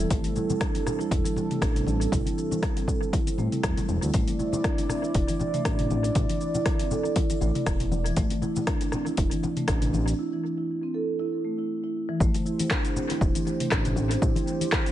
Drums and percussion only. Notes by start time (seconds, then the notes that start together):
0.10 kick, closed hi-hat, muted conga, shaker
0.24 closed hi-hat, high conga, shaker
0.36 low conga, shaker
0.50 muted conga, high conga, low conga, shaker
0.61 kick, cross-stick, closed hi-hat, shaker
0.75 closed hi-hat, muted conga, shaker
0.87 cross-stick, low conga, shaker
1.01 muted conga, shaker
1.11 kick, closed hi-hat, shaker
1.25 closed hi-hat, high conga, shaker
1.36 muted conga, low conga, shaker
1.51 closed hi-hat, mid tom, shaker
1.62 kick, cross-stick, closed hi-hat, muted conga, shaker
1.76 closed hi-hat, mid tom, shaker
1.87 muted conga, high conga, shaker
2.01 closed hi-hat, shaker
2.12 kick, closed hi-hat, mid tom, muted conga, shaker
2.26 closed hi-hat, high conga, shaker
2.38 shaker
2.51 muted conga, high conga, low conga, shaker
2.63 kick, cross-stick, closed hi-hat, shaker
2.77 closed hi-hat, muted conga, shaker
2.88 kick, low conga, shaker
3.03 muted conga, shaker
3.13 kick, closed hi-hat, high conga, shaker
3.27 closed hi-hat, high conga, shaker
3.38 muted conga, high conga, shaker
3.52 closed hi-hat, mid tom, shaker
3.63 kick, cross-stick, closed hi-hat, muted conga, shaker
3.77 closed hi-hat, low conga, shaker
3.89 muted conga, high conga, shaker
4.02 closed hi-hat, shaker
4.14 kick, closed hi-hat, muted conga, shaker
4.28 closed hi-hat, high conga, shaker
4.40 low conga, shaker
4.53 muted conga, high conga, low conga, shaker
4.64 kick, cross-stick, closed hi-hat, shaker
4.78 closed hi-hat, muted conga, shaker
4.89 cross-stick, low conga, shaker
5.03 muted conga, shaker
5.14 kick, closed hi-hat, shaker
5.28 closed hi-hat, high conga, shaker
5.39 muted conga, low conga, shaker
5.54 closed hi-hat, mid tom, shaker
5.65 kick, cross-stick, closed hi-hat, muted conga, shaker
5.79 closed hi-hat, mid tom, shaker
5.90 muted conga, high conga, shaker
6.04 closed hi-hat, shaker
6.15 kick, closed hi-hat, mid tom, muted conga, shaker
6.29 closed hi-hat, high conga, shaker
6.41 shaker
6.54 muted conga, high conga, low conga, shaker
6.66 kick, cross-stick, closed hi-hat, shaker
6.79 closed hi-hat, muted conga, shaker
6.91 low conga, shaker
7.05 muted conga, shaker
7.16 kick, closed hi-hat, high conga, shaker
7.30 closed hi-hat, high conga, shaker
7.41 muted conga, high conga, shaker
7.55 closed hi-hat, mid tom, shaker
7.66 kick, cross-stick, closed hi-hat, muted conga, shaker
7.80 closed hi-hat, low conga, shaker
7.92 muted conga, high conga, shaker
8.06 closed hi-hat, shaker
8.17 kick, closed hi-hat, muted conga, shaker
8.30 closed hi-hat, high conga, shaker
8.42 low conga, shaker
8.56 muted conga, high conga, low conga, shaker
8.67 kick, cross-stick, closed hi-hat, shaker
8.81 closed hi-hat, muted conga, shaker
8.92 cross-stick, low conga, shaker
9.06 muted conga, shaker
9.17 kick, closed hi-hat, shaker
9.31 closed hi-hat, high conga, shaker
9.43 muted conga, low conga, shaker
9.57 closed hi-hat, mid tom, shaker
9.68 kick, cross-stick, closed hi-hat, muted conga, shaker
9.82 closed hi-hat, mid tom, shaker
9.93 muted conga, high conga, shaker
10.08 closed hi-hat, shaker
12.20 kick, shaker
12.34 closed hi-hat, muted conga, high conga, shaker
12.46 shaker
12.59 closed hi-hat, high conga, shaker
12.71 kick, cross-stick, clap, muted conga, shaker
12.85 closed hi-hat, shaker
12.96 low conga, shaker
13.10 closed hi-hat, muted conga, shaker
13.21 kick, shaker
13.35 closed hi-hat, high conga, shaker
13.47 muted conga, shaker
13.60 closed hi-hat, mid tom, shaker
13.72 kick, cross-stick, clap, shaker
13.85 closed hi-hat, mid tom, muted conga, shaker
13.96 high conga, low conga, shaker
14.11 closed hi-hat, shaker
14.22 kick, shaker
14.35 closed hi-hat, muted conga, high conga, shaker
14.48 shaker
14.61 closed hi-hat, high conga, shaker
14.72 kick, cross-stick, clap, muted conga, shaker
14.86 closed hi-hat, shaker